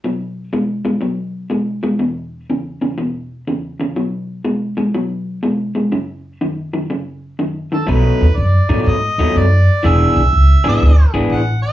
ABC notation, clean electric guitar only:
X:1
M:4/4
L:1/8
Q:"Swing" 1/4=122
K:Bmix
V:1 name="Clean electric guitar" clef=bass
[B,,F,]2 [B,,G,] [B,,G,] [B,,F,]2 [B,,G,] [B,,G,] | [E,,B,,]2 [E,,C,] [E,,C,] [E,,B,,]2 [E,,C,] [E,,C,] | [B,,F,]2 [B,,G,] [B,,G,] [B,,F,]2 [B,,G,] [B,,G,] | [F,,C,]2 [F,,D,] [F,,D,] [F,,C,]2 [F,,D,] [F,,D,] |
[B,,F,A,D] z2 [B,,F,A,D] z [B,,F,A,D] z2 | [E,B,=DG] z2 [E,B,DG] z [E,B,DG] z2 |]